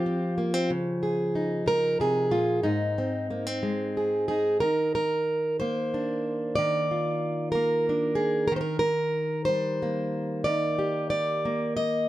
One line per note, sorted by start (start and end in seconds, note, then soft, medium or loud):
0.00 2.64 F3 medium
0.00 0.70 F4 medium
0.00 0.38 G4 medium
0.06 0.37 C4 soft
0.38 0.54 A#3 soft
0.54 0.70 C4 soft
0.70 1.65 C#3 medium
1.03 1.67 G#4 soft
1.35 2.31 D#4 soft
1.66 1.99 C#3 medium
1.66 2.00 A#4 loud
2.00 2.32 C3 medium
2.00 2.65 G#4 medium
2.31 2.64 A#2 medium
2.31 2.63 F4 medium
2.63 4.58 G#2 medium
2.63 4.29 D#4 medium
2.98 3.30 C4 soft
3.30 3.47 A#3 soft
3.47 4.62 C4 soft
3.63 4.58 G#3 medium
3.97 4.27 G#4 soft
4.28 4.59 D#4 soft
4.28 4.60 G#4 medium
4.60 6.53 D#3 medium
4.60 4.94 A#4 medium
4.95 5.59 A#4 medium
5.60 7.55 A#3 medium
5.60 6.55 C5 medium
5.94 6.90 D4 soft
6.55 8.47 D#3 medium
6.55 7.51 D5 loud
6.91 8.15 F4 soft
7.52 8.59 A#3 medium
7.52 8.46 A#4 medium
7.89 8.48 D4 soft
8.15 8.49 G#4 medium
8.48 8.56 A#4 loud
8.52 10.42 D#3 medium
8.56 8.60 C5 medium
8.61 8.78 A#4 medium
8.79 9.45 A#4 loud
9.45 10.42 G3 medium
9.45 10.44 C5 loud
9.82 11.45 A#3 soft
10.44 12.09 D#3 medium
10.44 11.09 D5 loud
10.79 12.09 G4 soft
11.10 11.76 D5 medium
11.45 12.09 A#3 medium
11.77 12.09 D#5 loud